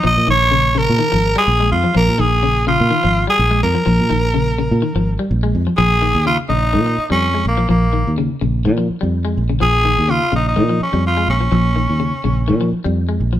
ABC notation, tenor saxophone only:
X:1
M:4/4
L:1/16
Q:"Swing 16ths" 1/4=125
K:Bbdor
V:1 name="Tenor saxophone"
e2 d4 B4- B A3 F2 | B2 A4 F4- F A3 B2- | B12 z4 | A4 F2 E4- E D3 B,2 |
B,4 z12 | A4 F2 E E3 D2 F2 D2- | D8- D2 z6 |]